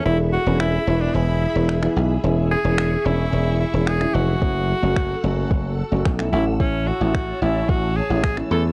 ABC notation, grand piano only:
X:1
M:4/4
L:1/16
Q:1/4=110
K:A
V:1 name="Grand piano"
[E,G,B,E]2 z [E,G,B,C]2 z [E,G,B,E]3 z2 [E,G,B,E] z [E,G,B,E]2 z | [E,G,CE]2 z [E,G,CE]2 z [E,G,CE]3 z2 [E,G,CE] z [E,G,CE]2 z | [F,A,CE]2 z [F,A,CF]2 z [F,A,CF]3 z2 [F,A,CF] z [F,A,CE]2 z | [E,A,CE]2 z [E,A,CE]2 z [E,A,CE]3 z2 [E,A,CE] z [E,A,CE]2 z |]